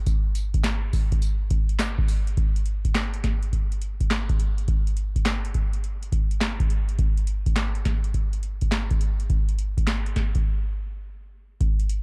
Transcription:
0.06 kick loud
0.06 closed hi-hat medium
0.06 tambourine medium
0.35 closed hi-hat medium
0.35 tambourine medium
0.54 kick loud
0.54 closed hi-hat medium
0.64 snare loud
0.64 clap medium
0.64 closed hi-hat medium
0.64 tambourine medium
0.93 kick medium
0.93 open hi-hat medium
0.93 tambourine medium
1.12 kick medium
1.12 closed hi-hat medium
1.22 closed hi-hat medium
1.22 tambourine medium
1.50 kick loud
1.50 closed hi-hat medium
1.69 closed hi-hat medium
1.79 snare loud
1.79 clap loud
1.79 closed hi-hat medium
1.79 tambourine loud
1.98 kick loud
2.08 open hi-hat medium
2.08 tambourine medium
2.27 closed hi-hat medium
2.37 kick loud
2.37 closed hi-hat medium
2.56 closed hi-hat medium
2.66 closed hi-hat medium
2.85 kick medium
2.85 closed hi-hat medium
2.95 snare loud
2.95 clap medium
2.95 closed hi-hat medium
3.14 closed hi-hat medium
3.24 kick medium
3.24 snare medium
3.24 closed hi-hat medium
3.43 closed hi-hat medium
3.53 kick medium
3.53 closed hi-hat medium
3.72 closed hi-hat soft
3.82 closed hi-hat medium
4.00 kick medium
4.00 closed hi-hat soft
4.11 snare loud
4.11 clap medium
4.11 closed hi-hat medium
4.29 kick loud
4.29 closed hi-hat soft
4.40 closed hi-hat medium
4.58 closed hi-hat soft
4.68 kick loud
4.68 closed hi-hat medium
4.87 closed hi-hat soft
4.97 closed hi-hat medium
5.16 kick medium
5.16 closed hi-hat medium
5.25 snare loud
5.25 clap medium
5.25 closed hi-hat medium
5.45 closed hi-hat medium
5.54 kick medium
5.54 closed hi-hat medium
5.73 closed hi-hat medium
5.84 closed hi-hat medium
6.03 closed hi-hat medium
6.12 kick medium
6.12 closed hi-hat medium
6.31 closed hi-hat medium
6.41 snare loud
6.41 clap medium
6.41 closed hi-hat medium
6.60 kick loud
6.60 closed hi-hat soft
6.70 closed hi-hat medium
6.89 closed hi-hat soft
6.99 kick loud
6.99 closed hi-hat medium
7.17 closed hi-hat medium
7.27 closed hi-hat medium
7.46 kick medium
7.46 closed hi-hat medium
7.56 snare loud
7.56 clap medium
7.56 closed hi-hat medium
7.75 closed hi-hat medium
7.85 kick medium
7.85 snare medium
7.85 closed hi-hat medium
8.04 closed hi-hat soft
8.14 kick medium
8.14 closed hi-hat medium
8.33 closed hi-hat medium
8.43 closed hi-hat medium
8.61 kick medium
8.61 closed hi-hat medium
8.72 snare loud
8.72 clap medium
8.72 closed hi-hat medium
8.91 kick loud
8.91 closed hi-hat soft
9.01 closed hi-hat medium
9.20 closed hi-hat soft
9.30 kick loud
9.30 closed hi-hat medium
9.49 closed hi-hat medium
9.59 closed hi-hat medium
9.77 kick medium
9.77 closed hi-hat medium
9.87 snare loud
9.87 clap medium
9.87 closed hi-hat medium
10.06 closed hi-hat soft
10.16 kick medium
10.16 snare medium
10.16 closed hi-hat medium
10.35 kick medium
10.35 closed hi-hat soft
11.61 kick loud
11.61 closed hi-hat medium
11.80 closed hi-hat medium
11.89 closed hi-hat medium

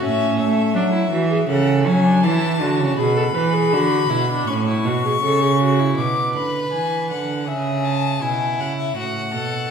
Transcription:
0.01 0.39 A2 medium
0.01 0.75 C#4 medium
0.01 0.38 E5 medium
0.38 0.75 A3 loud
0.38 1.47 E5 medium
0.74 1.11 F#3 loud
0.74 0.83 D4 loud
0.93 1.11 E4 medium
1.11 1.48 E3 loud
1.11 1.30 F#4 medium
1.30 1.38 G#4 medium
1.48 1.88 C#3 loud
1.48 1.87 A4 medium
1.48 1.85 F#5 medium
1.85 2.25 F#3 loud
1.85 2.07 C#4 medium
1.85 2.24 G#5 medium
2.05 2.24 D4 medium
2.23 2.62 E3 loud
2.23 2.60 E4 medium
2.23 2.96 A5 medium
2.61 2.81 D3 loud
2.61 3.00 F#4 medium
2.79 2.97 C#3 loud
2.97 3.34 B2 loud
2.97 3.16 G#4 medium
2.97 4.49 B5 medium
3.16 3.24 A4 medium
3.34 3.74 E3 loud
3.34 3.55 B4 medium
3.54 3.74 G#4 medium
3.72 4.09 D3 loud
3.72 4.12 F#4 medium
4.10 4.47 B2 medium
4.10 4.29 E4 medium
4.30 4.51 D4 medium
4.47 4.86 A2 loud
4.47 4.67 C#4 medium
4.47 4.55 C#6 medium
4.54 4.63 B5 medium
4.61 5.97 C#6 medium
4.68 4.88 E4 medium
4.84 5.21 B2 medium
4.84 5.04 F#4 medium
5.05 5.12 G#4 medium
5.22 5.96 C#3 medium
5.22 5.44 A4 medium
5.42 5.60 G#4 medium
5.61 5.81 F#4 medium
5.79 5.98 E4 medium
5.97 6.37 B2 medium
5.97 7.44 B4 medium
5.97 6.33 D6 medium
6.35 6.72 D3 medium
6.35 6.73 B5 medium
6.73 7.12 E3 medium
6.73 7.10 G#5 medium
7.11 7.49 D3 medium
7.11 7.50 F#5 medium
7.47 8.22 C#3 medium
7.47 8.23 G#4 medium
7.47 7.86 E5 medium
7.85 8.23 A5 medium
8.22 8.61 B2 medium
8.22 8.96 E4 medium
8.22 8.62 G#5 medium
8.60 8.96 C#3 medium
8.60 8.77 F#5 medium
8.78 8.96 E5 medium
8.96 9.35 A2 medium
8.96 9.33 F#4 medium
8.96 9.71 F#5 medium
9.34 9.71 B2 medium
9.34 9.71 A4 medium

